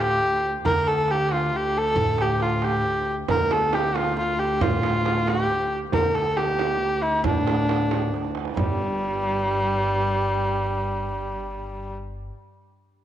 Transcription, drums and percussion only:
0.21 tombak ka soft
0.65 tombak dum medium
0.87 tombak tek medium
1.08 tombak tek medium
1.29 tombak tek medium
1.52 tombak ka soft
1.96 tombak dum medium
2.18 tombak tek medium
2.40 tombak tek medium
2.62 tombak tek medium
2.85 tombak ka soft
3.28 frame drum medium
3.28 tombak dum medium
3.51 frame drum medium
3.73 tombak tek medium
3.73 frame drum medium
3.96 tombak tek medium
3.96 frame drum medium
4.18 tombak ka soft
4.61 tombak dum medium
4.61 frame drum medium
4.83 tombak tek medium
4.83 frame drum medium
5.05 tombak tek medium
5.05 frame drum medium
5.27 tombak tek medium
5.27 frame drum medium
5.49 tombak ka soft
5.92 tombak dum medium
5.92 frame drum medium
6.15 tombak tek medium
6.37 tombak tek medium
6.37 frame drum medium
6.58 tombak tek medium
6.58 frame drum medium
6.81 tombak ka soft
7.25 tombak dum medium
7.25 frame drum medium
7.47 tombak tek medium
7.47 frame drum medium
7.69 tombak tek medium
7.69 frame drum medium
7.91 tombak tek medium
7.91 frame drum medium
8.14 tombak tek medium
8.24 tombak ka medium
8.35 tombak tek medium
8.45 tombak ka medium
8.57 tombak dum medium
8.57 frame drum medium

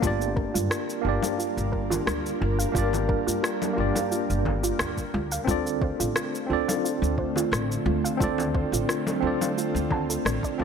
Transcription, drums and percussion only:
0.03 kick loud
0.03 shaker medium
0.22 shaker soft
0.37 kick medium
0.56 shaker medium
0.71 cross-stick loud
0.71 shaker medium
0.90 shaker soft
1.23 high conga medium
1.23 shaker medium
1.40 shaker soft
1.58 shaker soft
1.73 kick medium
1.91 low conga medium
1.91 shaker medium
2.07 cross-stick loud
2.07 shaker medium
2.26 shaker soft
2.60 shaker medium
2.75 kick loud
2.75 shaker medium
2.93 low conga medium
2.93 shaker soft
3.09 kick loud
3.28 shaker medium
3.44 cross-stick loud
3.44 shaker medium
3.62 high conga medium
3.62 shaker soft
3.96 high conga medium
3.96 shaker medium
4.12 shaker medium
4.30 shaker soft
4.45 kick medium
4.45 low conga medium
4.64 shaker medium
4.79 cross-stick loud
4.79 shaker medium
4.97 kick medium
4.97 shaker soft
5.32 shaker medium
5.48 kick loud
5.48 shaker medium
5.67 shaker soft
5.82 kick loud
6.01 shaker medium
6.16 cross-stick loud
6.16 shaker medium
6.35 shaker soft
6.69 high conga medium
6.69 shaker medium
6.86 shaker medium
7.04 shaker soft
7.18 kick medium
7.36 low conga medium
7.36 shaker medium
7.53 cross-stick loud
7.53 shaker medium
7.72 shaker soft
8.06 shaker medium
8.20 kick loud
8.20 shaker medium
8.38 low conga medium
8.38 shaker soft
8.55 kick loud
8.74 shaker medium
8.89 cross-stick medium
8.89 shaker medium
9.07 high conga medium
9.07 shaker soft
9.41 high conga medium
9.41 shaker medium
9.58 shaker medium
9.76 shaker soft
9.90 kick medium
9.90 low conga medium
10.10 shaker medium
10.26 cross-stick medium
10.26 shaker medium
10.43 kick medium
10.43 shaker soft

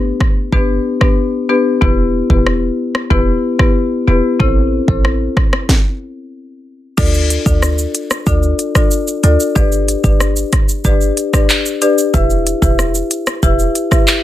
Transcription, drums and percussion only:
0.21 kick medium
0.21 cross-stick medium
0.52 kick medium
1.01 kick medium
1.01 cross-stick medium
1.82 kick loud
2.30 kick loud
2.47 cross-stick medium
2.95 cross-stick medium
3.11 kick medium
3.59 kick medium
3.59 cross-stick medium
4.40 kick loud
4.88 kick medium
5.05 cross-stick medium
5.37 kick medium
5.37 cross-stick medium
5.53 cross-stick loud
5.69 kick loud
5.69 snare medium
6.98 kick loud
6.98 crash loud
6.98 shaker medium
7.14 shaker medium
7.30 closed hi-hat medium
7.30 shaker soft
7.46 kick loud
7.46 shaker medium
7.62 cross-stick medium
7.62 shaker medium
7.78 shaker medium
7.95 closed hi-hat medium
7.95 shaker medium
8.11 cross-stick medium
8.11 shaker medium
8.27 kick loud
8.27 shaker medium
8.43 shaker soft
8.59 closed hi-hat medium
8.59 shaker soft
8.75 kick medium
8.75 cross-stick medium
8.75 shaker medium
8.91 shaker medium
9.07 shaker medium
9.24 closed hi-hat medium
9.24 shaker medium
9.40 shaker medium
9.56 kick loud
9.56 shaker medium
9.72 shaker medium
9.88 closed hi-hat medium
9.88 shaker medium
10.04 kick loud
10.04 shaker medium
10.20 cross-stick medium
10.20 shaker medium
10.36 shaker medium
10.53 kick loud
10.53 cross-stick medium
10.53 closed hi-hat medium
10.53 shaker medium
10.69 shaker medium
10.85 kick medium
10.85 shaker medium
11.01 shaker soft
11.17 closed hi-hat medium
11.17 shaker soft
11.34 kick medium
11.34 cross-stick medium
11.34 shaker medium
11.49 clap loud
11.49 shaker medium
11.66 shaker medium
11.82 closed hi-hat medium
11.82 shaker soft
11.98 shaker medium
12.14 kick loud
12.14 shaker medium
12.30 shaker medium
12.47 closed hi-hat medium
12.47 shaker medium
12.62 kick medium
12.62 shaker medium
12.79 cross-stick medium
12.79 shaker medium
12.95 shaker medium
13.11 closed hi-hat medium
13.11 shaker medium
13.27 cross-stick loud
13.27 shaker medium
13.43 kick loud
13.43 shaker medium
13.59 shaker soft
13.75 closed hi-hat medium
13.75 shaker soft
13.92 kick medium
13.92 cross-stick medium
13.92 shaker medium
14.07 clap medium
14.07 shaker medium

